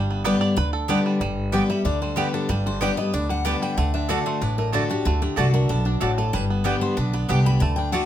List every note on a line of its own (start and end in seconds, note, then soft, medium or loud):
0.00 0.33 G1 loud
0.00 0.54 G2 loud
0.00 0.39 G3 medium
0.00 0.89 D4 medium
0.11 0.25 B3 medium
0.24 0.55 D3 loud
0.24 0.56 G3 loud
0.24 0.34 B3 medium
0.24 0.56 B3 loud
0.24 0.34 G4 medium
0.24 0.56 G4 loud
0.24 0.41 B4 loud
0.24 0.35 D5 loud
0.24 0.35 G5 loud
0.41 0.56 D5 loud
0.57 0.97 D2 medium
0.57 0.87 D3 medium
0.57 0.73 B4 loud
0.73 1.18 A4 medium
0.88 1.19 D3 medium
0.88 1.20 G3 loud
0.88 0.98 B3 loud
0.88 1.20 B3 loud
0.88 1.22 D4 medium
0.88 0.98 G4 medium
0.88 1.20 G4 loud
0.88 0.99 D5 loud
0.88 0.99 G5 loud
1.06 1.20 G3 medium
1.20 1.60 G1 loud
1.20 1.82 G2 loud
1.20 1.70 G3 medium
1.52 1.69 D3 medium
1.52 1.69 G3 medium
1.52 1.62 B3 medium
1.52 1.69 B3 medium
1.52 1.62 G4 medium
1.52 1.98 G4 medium
1.52 1.68 G4 loud
1.52 1.63 D5 medium
1.52 1.63 G5 loud
1.69 2.01 G3 medium
1.69 1.85 B3 soft
1.69 1.85 G4 medium
1.69 1.84 E5 medium
1.85 2.24 D2 medium
1.85 2.15 D3 medium
1.85 2.34 D4 medium
1.85 2.01 D5 medium
2.02 2.47 G3 medium
2.02 2.17 C5 medium
2.16 2.47 D3 medium
2.16 2.47 G3 medium
2.16 2.26 B3 medium
2.16 2.48 B3 loud
2.16 2.63 B3 medium
2.16 2.26 G4 medium
2.16 2.48 G4 medium
2.16 2.33 B4 medium
2.16 2.26 D5 medium
2.16 2.27 G5 medium
2.34 2.66 D4 medium
2.34 2.49 A4 medium
2.49 2.89 G1 loud
2.49 3.10 G2 loud
2.49 2.80 G3 medium
2.49 2.66 B4 medium
2.66 3.13 D4 medium
2.66 2.82 C5 loud
2.81 2.97 D3 medium
2.81 2.97 G3 medium
2.81 3.27 G3 medium
2.81 2.90 B3 medium
2.81 2.97 B3 loud
2.81 2.90 G4 medium
2.81 2.96 G4 loud
2.81 2.91 D5 medium
2.81 2.97 D5 medium
2.81 2.91 G5 loud
2.97 3.42 B3 medium
2.97 3.14 B3 medium
2.97 3.13 G4 medium
2.97 3.13 D#5 medium
3.13 3.53 D2 medium
3.13 3.44 D3 medium
3.13 3.45 D4 medium
3.13 3.29 D5 medium
3.29 3.61 G3 medium
3.29 3.45 F#5 medium
3.45 3.76 D3 medium
3.45 3.76 G3 loud
3.45 3.54 B3 medium
3.45 3.76 B3 medium
3.45 3.94 D4 medium
3.45 3.55 G4 medium
3.45 3.77 G4 loud
3.45 3.55 D5 medium
3.45 3.55 G5 medium
3.45 3.61 A5 loud
3.62 3.77 G3 medium
3.62 3.78 G5 loud
3.77 4.17 D2 medium
3.77 4.08 D3 loud
3.77 4.26 A3 medium
3.77 3.93 F#5 medium
3.94 4.10 D4 medium
3.94 4.09 E5 medium
4.09 4.40 D3 loud
4.09 4.18 A3 medium
4.09 4.40 A3 medium
4.09 4.42 D4 medium
4.09 4.40 D4 loud
4.09 4.18 F#4 loud
4.09 4.41 F#4 loud
4.09 4.19 D5 loud
4.09 4.26 D5 medium
4.09 4.19 A5 loud
4.26 4.58 A3 medium
4.26 4.42 C5 medium
4.41 4.81 A1 medium
4.41 5.02 A2 medium
4.41 4.74 D4 medium
4.41 4.57 B4 medium
4.58 5.03 A3 medium
4.58 4.73 A#4 medium
4.73 4.89 D3 medium
4.73 4.82 A3 medium
4.73 4.89 A3 medium
4.73 4.90 D4 medium
4.73 4.82 F#4 medium
4.73 4.88 F#4 medium
4.73 4.89 A4 medium
4.73 4.83 D5 medium
4.73 4.83 A5 loud
4.89 5.22 D4 medium
4.89 5.06 D4 soft
4.89 5.05 F#4 medium
4.89 5.05 G4 medium
5.05 5.26 D2 loud
5.05 5.36 D3 loud
5.05 5.37 A3 medium
5.05 5.21 F#4 medium
5.22 5.54 D4 medium
5.22 5.37 G4 medium
5.36 5.65 C2 medium
5.36 5.68 D3 medium
5.36 5.46 A3 medium
5.36 5.83 A3 medium
5.36 5.68 A3 medium
5.36 5.68 D4 medium
5.36 5.46 F#4 medium
5.36 5.69 F#4 medium
5.36 5.53 A4 medium
5.36 5.46 D5 loud
5.36 5.47 A5 loud
5.54 5.70 D4 medium
5.54 5.70 A#4 loud
5.69 5.97 B1 medium
5.69 6.00 B2 medium
5.69 5.86 D4 medium
5.69 5.85 A4 medium
5.85 6.01 D4 medium
5.85 6.02 D4 medium
6.01 6.29 A1 medium
6.01 6.32 A2 medium
6.01 6.10 A3 medium
6.01 6.97 D4 medium
6.01 6.10 F#4 medium
6.01 6.17 F#4 medium
6.01 6.11 D5 loud
6.01 6.11 A5 medium
6.18 6.33 A3 medium
6.18 6.35 A4 medium
6.33 6.73 G1 medium
6.33 6.94 G2 loud
6.33 6.64 G3 medium
6.33 6.44 B4 medium
6.50 6.81 B3 medium
6.64 6.95 D3 medium
6.64 6.96 G3 medium
6.64 7.11 G3 medium
6.64 6.74 B3 medium
6.64 6.96 B3 medium
6.64 6.74 G4 medium
6.64 6.96 G4 medium
6.64 6.75 D5 medium
6.64 6.75 G5 loud
6.81 7.13 B3 medium
6.81 6.97 C5 loud
6.97 7.25 B1 medium
6.97 7.29 D4 medium
6.97 7.13 B4 medium
7.13 7.59 B3 medium
7.13 7.29 D5 medium
7.29 7.57 C2 medium
7.29 7.59 D3 medium
7.29 7.60 G3 medium
7.29 7.38 B3 medium
7.29 7.60 B3 medium
7.29 7.78 D4 medium
7.29 7.39 G4 medium
7.29 7.60 G4 loud
7.29 7.39 D5 medium
7.29 7.45 G5 medium
7.29 7.39 G5 loud
7.46 7.62 G3 medium
7.46 7.61 B5 loud
7.60 8.01 D2 loud
7.60 7.91 D3 medium
7.60 7.93 A3 medium
7.60 7.76 A5 medium
7.76 8.05 D4 medium
7.76 7.92 G5 medium
7.92 8.05 D3 medium
7.92 8.02 A3 medium
7.92 8.05 A3 loud
7.92 8.05 A3 medium
7.92 8.05 D4 loud
7.92 8.03 F#4 medium
7.92 8.05 F#4 loud
7.92 8.03 D5 medium
7.92 8.05 F#5 medium
7.92 8.03 A5 medium